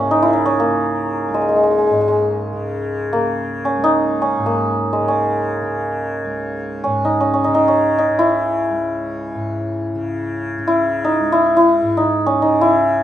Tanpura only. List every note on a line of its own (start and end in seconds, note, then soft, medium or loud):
0.00 1.28 C#2 soft
0.00 1.90 G#2 soft
0.00 0.04 C#3 soft
0.00 0.67 C#3 soft
0.67 2.53 C#3 soft
1.28 3.76 C#2 soft
1.90 4.37 G#2 soft
2.53 3.14 C#3 soft
3.14 5.00 C#3 soft
3.76 6.24 C#2 soft
4.38 6.86 G#2 soft
5.00 5.62 C#3 soft
5.62 7.48 C#3 medium
6.25 8.70 C#2 soft
6.86 9.34 G#2 soft
7.48 8.09 C#3 medium
8.09 9.95 C#3 soft
8.70 11.20 C#2 soft
9.35 11.82 G#2 soft
9.95 10.58 C#3 soft
10.58 12.43 C#3 medium
11.20 13.03 C#2 soft
11.82 13.03 G#2 soft
12.43 13.03 C#3 medium